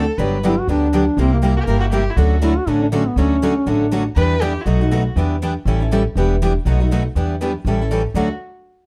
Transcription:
Already playing: violin A4
0.18 upright bass G1, steel-string acoustic guitar D3 F#3 B3 D4 G4, violin B4
0.44 steel-string acoustic guitar D3 F#3 B3 D4 G4, duduk E4
0.60 duduk F#4
0.67 upright bass D2, steel-string acoustic guitar D3 F#3 B3 D4 G4, duduk D4
0.93 steel-string acoustic guitar D3 F#3 B3 D4 G4
1.17 upright bass C2, steel-string acoustic guitar C3 G3 A#3 E4 G4, duduk C4
1.33 duduk A#3
1.42 steel-string acoustic guitar C3 G3 A#3 E4 G4
1.57 violin F#4
1.61 violin G4
1.66 upright bass G1, steel-string acoustic guitar C3 G3 A#3 E4 G4, violin A#4
1.80 violin F#4
1.92 steel-string acoustic guitar C3 G3 A#3 E4 G4, violin G4
2.10 violin E4
2.16 upright bass D2, steel-string acoustic guitar D3 F#3 A3 C#4 F#4 A4, violin F#4
2.42 steel-string acoustic guitar D3 F#3 A3 C#4 F#4 A4, duduk E4
2.58 duduk F#4
2.67 upright bass A1, steel-string acoustic guitar D3 F#3 A3 C#4 F#4 A4, duduk D4
2.83 duduk D4
2.92 steel-string acoustic guitar D3 F#3 A3 C#4 F#4 A4, duduk C#4
3.08 duduk B3
3.16 upright bass D2, steel-string acoustic guitar D3 F#3 A3 C#4 F#4 A4, duduk C#4
3.42 steel-string acoustic guitar D3 F#3 A3 C#4 F#4 A4
3.66 upright bass A1, steel-string acoustic guitar D3 F#3 A3 C#4 F#4 A4, duduk D4
3.92 steel-string acoustic guitar D3 F#3 A3 C#4 F#4 A4
4.16 upright bass E2, steel-string acoustic guitar E3 G3 B3 D4 E4 G4 B4, violin B4
4.42 steel-string acoustic guitar E3 G3 B3 D4 E4 G4 B4, violin G4
4.61 violin E4
4.66 upright bass B1, steel-string acoustic guitar B2 F#3 A3 D#4 F#4 B4, violin F#4
4.81 steel-string acoustic guitar A3 D#4 F#4
4.91 steel-string acoustic guitar B2 F#3 A3 D#4 F#4 B4
5.16 upright bass E2, steel-string acoustic guitar E3 G3 B3 D4 E4 G4 B4
5.42 steel-string acoustic guitar E3 G3 B3 D4 E4 G4 B4
5.65 upright bass A1, steel-string acoustic guitar E3 G3 C#4 E4 A4
5.80 steel-string acoustic guitar C#4 E4 A4
5.92 steel-string acoustic guitar E3 G3 C#4 E4 A4
6.15 upright bass E1, steel-string acoustic guitar E3 G3 B3 D4 E4 G4 B4
6.42 steel-string acoustic guitar E3 G3 B3 D4 E4 G4 B4
6.65 upright bass B1, steel-string acoustic guitar B2 F#3 A3 D#4 F#4 B4
6.80 steel-string acoustic guitar A3 D#4 F#4
6.92 steel-string acoustic guitar B2 F#3 A3 D#4 F#4 B4
7.15 upright bass E2, steel-string acoustic guitar E3 G3 B3 D4 E4 G4 B4
7.41 steel-string acoustic guitar E3 G3 B3 D4 E4 G4 B4
7.65 upright bass A1, steel-string acoustic guitar E3 G3 C#4 E4 A4
7.81 steel-string acoustic guitar C#4 E4 A4
7.91 steel-string acoustic guitar E3 G3 C#4 E4 A4
8.14 upright bass D2, steel-string acoustic guitar D3 F#3 A3 C#4 F#4 A4, violin F#4

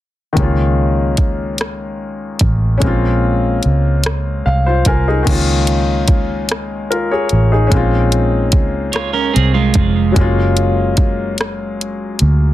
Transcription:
0.33 grand piano D#3 G#3, kick
0.37 fingered electric bass C#2, grand piano A#3 C#4, closed hi-hat
0.42 grand piano F4
1.17 kick, closed hi-hat
1.58 cross-stick, closed hi-hat
2.39 fingered electric bass A1, kick, closed hi-hat
2.78 grand piano G#3 C#4
2.82 fingered electric bass A#1, grand piano A#3 C4, kick, closed hi-hat
2.87 grand piano F4
3.63 fingered electric bass C#2, closed hi-hat
4.04 cross-stick, closed hi-hat
4.46 fingered electric bass C2, grand piano F5
4.66 grand piano F4 C5
4.85 fingered electric bass C2, grand piano F4 A#4 G#5, kick, closed hi-hat
5.08 grand piano D#4 G#4
5.23 grand piano D#3 G#3
5.27 fingered electric bass C#2, grand piano A#3 C#4, kick, closed hi-hat, crash
5.32 grand piano F4
5.67 closed hi-hat
6.08 kick, closed hi-hat
6.49 cross-stick, closed hi-hat
6.91 grand piano F4 A#4, closed hi-hat
7.11 grand piano G#4 C#5
7.29 fingered electric bass A1, closed hi-hat
7.52 grand piano D#4 G#4
7.67 grand piano G#3 C#4
7.72 fingered electric bass A#1, grand piano A#3 C4, kick, closed hi-hat
7.77 grand piano F4
8.12 closed hi-hat
8.52 fingered electric bass C#2, kick, closed hi-hat
8.93 clean electric guitar F4 C#5, cross-stick, closed hi-hat
9.13 clean electric guitar C#4 A#4
9.34 fingered electric bass C2, clean electric guitar C4 G#4, closed hi-hat
9.54 clean electric guitar G#3 F4
9.74 fingered electric bass F1, kick, closed hi-hat
10.12 grand piano F#3 G#3
10.16 fingered electric bass F#1, grand piano A#3 C#4, kick, closed hi-hat
10.21 grand piano F4
10.57 closed hi-hat
10.97 kick, closed hi-hat
11.38 cross-stick, closed hi-hat
11.81 closed hi-hat
12.19 fingered electric bass D2, closed hi-hat

